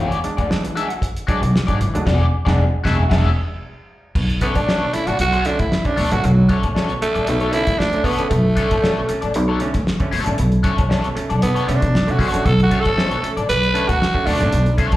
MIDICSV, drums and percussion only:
0, 0, Header, 1, 2, 480
1, 0, Start_track
1, 0, Tempo, 521286
1, 1902, Time_signature, 4, 2, 24, 8
1, 6697, Tempo, 517688
1, 13831, End_track
2, 0, Start_track
2, 0, Title_t, "Drums"
2, 109, Note_on_c, 9, 42, 51
2, 201, Note_off_c, 9, 42, 0
2, 220, Note_on_c, 9, 42, 58
2, 312, Note_off_c, 9, 42, 0
2, 353, Note_on_c, 9, 42, 48
2, 354, Note_on_c, 9, 36, 92
2, 445, Note_off_c, 9, 42, 0
2, 446, Note_off_c, 9, 36, 0
2, 468, Note_on_c, 9, 38, 115
2, 560, Note_off_c, 9, 38, 0
2, 595, Note_on_c, 9, 42, 59
2, 687, Note_off_c, 9, 42, 0
2, 710, Note_on_c, 9, 42, 80
2, 802, Note_off_c, 9, 42, 0
2, 832, Note_on_c, 9, 42, 44
2, 924, Note_off_c, 9, 42, 0
2, 939, Note_on_c, 9, 36, 92
2, 946, Note_on_c, 9, 42, 86
2, 1031, Note_off_c, 9, 36, 0
2, 1038, Note_off_c, 9, 42, 0
2, 1073, Note_on_c, 9, 42, 51
2, 1165, Note_off_c, 9, 42, 0
2, 1183, Note_on_c, 9, 36, 107
2, 1184, Note_on_c, 9, 42, 73
2, 1275, Note_off_c, 9, 36, 0
2, 1276, Note_off_c, 9, 42, 0
2, 1316, Note_on_c, 9, 42, 56
2, 1408, Note_off_c, 9, 42, 0
2, 1433, Note_on_c, 9, 38, 103
2, 1525, Note_off_c, 9, 38, 0
2, 1549, Note_on_c, 9, 42, 49
2, 1551, Note_on_c, 9, 36, 85
2, 1641, Note_off_c, 9, 42, 0
2, 1644, Note_off_c, 9, 36, 0
2, 1665, Note_on_c, 9, 42, 84
2, 1757, Note_off_c, 9, 42, 0
2, 1796, Note_on_c, 9, 42, 58
2, 1888, Note_off_c, 9, 42, 0
2, 1903, Note_on_c, 9, 36, 106
2, 1905, Note_on_c, 9, 49, 78
2, 1908, Note_on_c, 9, 38, 97
2, 1995, Note_off_c, 9, 36, 0
2, 1997, Note_off_c, 9, 49, 0
2, 2000, Note_off_c, 9, 38, 0
2, 2271, Note_on_c, 9, 36, 118
2, 2276, Note_on_c, 9, 38, 102
2, 2363, Note_off_c, 9, 36, 0
2, 2368, Note_off_c, 9, 38, 0
2, 2624, Note_on_c, 9, 36, 108
2, 2630, Note_on_c, 9, 38, 110
2, 2717, Note_off_c, 9, 36, 0
2, 2722, Note_off_c, 9, 38, 0
2, 2865, Note_on_c, 9, 36, 107
2, 2866, Note_on_c, 9, 49, 84
2, 2870, Note_on_c, 9, 38, 95
2, 2957, Note_off_c, 9, 36, 0
2, 2958, Note_off_c, 9, 49, 0
2, 2962, Note_off_c, 9, 38, 0
2, 3824, Note_on_c, 9, 36, 93
2, 3825, Note_on_c, 9, 49, 92
2, 3916, Note_off_c, 9, 36, 0
2, 3918, Note_off_c, 9, 49, 0
2, 3954, Note_on_c, 9, 42, 32
2, 4046, Note_off_c, 9, 42, 0
2, 4062, Note_on_c, 9, 42, 65
2, 4065, Note_on_c, 9, 36, 104
2, 4154, Note_off_c, 9, 42, 0
2, 4157, Note_off_c, 9, 36, 0
2, 4193, Note_on_c, 9, 42, 49
2, 4197, Note_on_c, 9, 36, 84
2, 4285, Note_off_c, 9, 42, 0
2, 4289, Note_off_c, 9, 36, 0
2, 4314, Note_on_c, 9, 38, 119
2, 4407, Note_off_c, 9, 38, 0
2, 4545, Note_on_c, 9, 42, 75
2, 4637, Note_off_c, 9, 42, 0
2, 4669, Note_on_c, 9, 42, 44
2, 4761, Note_off_c, 9, 42, 0
2, 4779, Note_on_c, 9, 42, 89
2, 4871, Note_off_c, 9, 42, 0
2, 4909, Note_on_c, 9, 42, 33
2, 5001, Note_off_c, 9, 42, 0
2, 5016, Note_on_c, 9, 42, 74
2, 5108, Note_off_c, 9, 42, 0
2, 5148, Note_on_c, 9, 42, 54
2, 5153, Note_on_c, 9, 36, 96
2, 5240, Note_off_c, 9, 42, 0
2, 5246, Note_off_c, 9, 36, 0
2, 5267, Note_on_c, 9, 38, 110
2, 5359, Note_off_c, 9, 38, 0
2, 5386, Note_on_c, 9, 42, 36
2, 5390, Note_on_c, 9, 36, 84
2, 5478, Note_off_c, 9, 42, 0
2, 5482, Note_off_c, 9, 36, 0
2, 5501, Note_on_c, 9, 46, 89
2, 5593, Note_off_c, 9, 46, 0
2, 5630, Note_on_c, 9, 42, 59
2, 5722, Note_off_c, 9, 42, 0
2, 5744, Note_on_c, 9, 42, 77
2, 5836, Note_off_c, 9, 42, 0
2, 5979, Note_on_c, 9, 42, 70
2, 5981, Note_on_c, 9, 36, 101
2, 6071, Note_off_c, 9, 42, 0
2, 6074, Note_off_c, 9, 36, 0
2, 6108, Note_on_c, 9, 42, 50
2, 6114, Note_on_c, 9, 36, 95
2, 6200, Note_off_c, 9, 42, 0
2, 6206, Note_off_c, 9, 36, 0
2, 6229, Note_on_c, 9, 38, 120
2, 6321, Note_off_c, 9, 38, 0
2, 6351, Note_on_c, 9, 42, 35
2, 6443, Note_off_c, 9, 42, 0
2, 6465, Note_on_c, 9, 42, 68
2, 6557, Note_off_c, 9, 42, 0
2, 6586, Note_on_c, 9, 42, 43
2, 6678, Note_off_c, 9, 42, 0
2, 6696, Note_on_c, 9, 42, 86
2, 6789, Note_off_c, 9, 42, 0
2, 6819, Note_on_c, 9, 42, 35
2, 6911, Note_off_c, 9, 42, 0
2, 6933, Note_on_c, 9, 42, 76
2, 7026, Note_off_c, 9, 42, 0
2, 7063, Note_on_c, 9, 42, 56
2, 7069, Note_on_c, 9, 36, 102
2, 7156, Note_off_c, 9, 42, 0
2, 7161, Note_off_c, 9, 36, 0
2, 7186, Note_on_c, 9, 38, 102
2, 7279, Note_off_c, 9, 38, 0
2, 7302, Note_on_c, 9, 42, 34
2, 7395, Note_off_c, 9, 42, 0
2, 7410, Note_on_c, 9, 36, 87
2, 7414, Note_on_c, 9, 46, 92
2, 7503, Note_off_c, 9, 36, 0
2, 7507, Note_off_c, 9, 46, 0
2, 7543, Note_on_c, 9, 42, 52
2, 7635, Note_off_c, 9, 42, 0
2, 7657, Note_on_c, 9, 42, 86
2, 7658, Note_on_c, 9, 36, 95
2, 7749, Note_off_c, 9, 42, 0
2, 7751, Note_off_c, 9, 36, 0
2, 7896, Note_on_c, 9, 42, 66
2, 7900, Note_on_c, 9, 36, 90
2, 7989, Note_off_c, 9, 42, 0
2, 7993, Note_off_c, 9, 36, 0
2, 8028, Note_on_c, 9, 42, 50
2, 8034, Note_on_c, 9, 36, 99
2, 8121, Note_off_c, 9, 42, 0
2, 8127, Note_off_c, 9, 36, 0
2, 8146, Note_on_c, 9, 38, 123
2, 8239, Note_off_c, 9, 38, 0
2, 8379, Note_on_c, 9, 42, 68
2, 8472, Note_off_c, 9, 42, 0
2, 8503, Note_on_c, 9, 42, 46
2, 8596, Note_off_c, 9, 42, 0
2, 8615, Note_on_c, 9, 42, 81
2, 8708, Note_off_c, 9, 42, 0
2, 8854, Note_on_c, 9, 42, 73
2, 8947, Note_off_c, 9, 42, 0
2, 8985, Note_on_c, 9, 42, 60
2, 8986, Note_on_c, 9, 38, 38
2, 8991, Note_on_c, 9, 36, 90
2, 9078, Note_off_c, 9, 42, 0
2, 9079, Note_off_c, 9, 38, 0
2, 9084, Note_off_c, 9, 36, 0
2, 9105, Note_on_c, 9, 38, 107
2, 9198, Note_off_c, 9, 38, 0
2, 9224, Note_on_c, 9, 42, 36
2, 9229, Note_on_c, 9, 36, 97
2, 9316, Note_off_c, 9, 42, 0
2, 9322, Note_off_c, 9, 36, 0
2, 9341, Note_on_c, 9, 46, 88
2, 9434, Note_off_c, 9, 46, 0
2, 9466, Note_on_c, 9, 42, 58
2, 9559, Note_off_c, 9, 42, 0
2, 9578, Note_on_c, 9, 42, 83
2, 9671, Note_off_c, 9, 42, 0
2, 9706, Note_on_c, 9, 42, 34
2, 9798, Note_off_c, 9, 42, 0
2, 9818, Note_on_c, 9, 42, 74
2, 9822, Note_on_c, 9, 36, 108
2, 9911, Note_off_c, 9, 42, 0
2, 9914, Note_off_c, 9, 36, 0
2, 9951, Note_on_c, 9, 42, 48
2, 9956, Note_on_c, 9, 36, 98
2, 10044, Note_off_c, 9, 42, 0
2, 10049, Note_off_c, 9, 36, 0
2, 10069, Note_on_c, 9, 38, 119
2, 10162, Note_off_c, 9, 38, 0
2, 10191, Note_on_c, 9, 42, 34
2, 10284, Note_off_c, 9, 42, 0
2, 10307, Note_on_c, 9, 42, 74
2, 10399, Note_off_c, 9, 42, 0
2, 10431, Note_on_c, 9, 42, 43
2, 10524, Note_off_c, 9, 42, 0
2, 10544, Note_on_c, 9, 42, 93
2, 10637, Note_off_c, 9, 42, 0
2, 10673, Note_on_c, 9, 42, 39
2, 10766, Note_off_c, 9, 42, 0
2, 10789, Note_on_c, 9, 42, 73
2, 10882, Note_off_c, 9, 42, 0
2, 10916, Note_on_c, 9, 42, 59
2, 10917, Note_on_c, 9, 36, 97
2, 11009, Note_off_c, 9, 42, 0
2, 11010, Note_off_c, 9, 36, 0
2, 11035, Note_on_c, 9, 38, 104
2, 11127, Note_off_c, 9, 38, 0
2, 11155, Note_on_c, 9, 42, 36
2, 11248, Note_off_c, 9, 42, 0
2, 11256, Note_on_c, 9, 36, 99
2, 11267, Note_on_c, 9, 46, 92
2, 11349, Note_off_c, 9, 36, 0
2, 11360, Note_off_c, 9, 46, 0
2, 11394, Note_on_c, 9, 42, 58
2, 11486, Note_off_c, 9, 42, 0
2, 11503, Note_on_c, 9, 36, 106
2, 11503, Note_on_c, 9, 42, 86
2, 11596, Note_off_c, 9, 36, 0
2, 11596, Note_off_c, 9, 42, 0
2, 11632, Note_on_c, 9, 42, 35
2, 11725, Note_off_c, 9, 42, 0
2, 11740, Note_on_c, 9, 42, 67
2, 11744, Note_on_c, 9, 36, 100
2, 11833, Note_off_c, 9, 42, 0
2, 11836, Note_off_c, 9, 36, 0
2, 11870, Note_on_c, 9, 42, 47
2, 11877, Note_on_c, 9, 36, 92
2, 11963, Note_off_c, 9, 42, 0
2, 11969, Note_off_c, 9, 36, 0
2, 11991, Note_on_c, 9, 38, 116
2, 12083, Note_off_c, 9, 38, 0
2, 12112, Note_on_c, 9, 42, 37
2, 12205, Note_off_c, 9, 42, 0
2, 12229, Note_on_c, 9, 42, 71
2, 12321, Note_off_c, 9, 42, 0
2, 12353, Note_on_c, 9, 42, 43
2, 12446, Note_off_c, 9, 42, 0
2, 12465, Note_on_c, 9, 42, 96
2, 12558, Note_off_c, 9, 42, 0
2, 12591, Note_on_c, 9, 42, 41
2, 12684, Note_off_c, 9, 42, 0
2, 12704, Note_on_c, 9, 42, 79
2, 12797, Note_off_c, 9, 42, 0
2, 12832, Note_on_c, 9, 42, 54
2, 12833, Note_on_c, 9, 38, 37
2, 12835, Note_on_c, 9, 36, 100
2, 12925, Note_off_c, 9, 42, 0
2, 12926, Note_off_c, 9, 38, 0
2, 12927, Note_off_c, 9, 36, 0
2, 12953, Note_on_c, 9, 38, 114
2, 13046, Note_off_c, 9, 38, 0
2, 13070, Note_on_c, 9, 36, 92
2, 13162, Note_off_c, 9, 36, 0
2, 13181, Note_on_c, 9, 46, 91
2, 13274, Note_off_c, 9, 46, 0
2, 13310, Note_on_c, 9, 42, 55
2, 13403, Note_off_c, 9, 42, 0
2, 13420, Note_on_c, 9, 42, 82
2, 13513, Note_off_c, 9, 42, 0
2, 13547, Note_on_c, 9, 42, 36
2, 13640, Note_off_c, 9, 42, 0
2, 13660, Note_on_c, 9, 42, 65
2, 13661, Note_on_c, 9, 36, 105
2, 13753, Note_off_c, 9, 42, 0
2, 13754, Note_off_c, 9, 36, 0
2, 13786, Note_on_c, 9, 42, 50
2, 13793, Note_on_c, 9, 36, 92
2, 13831, Note_off_c, 9, 36, 0
2, 13831, Note_off_c, 9, 42, 0
2, 13831, End_track
0, 0, End_of_file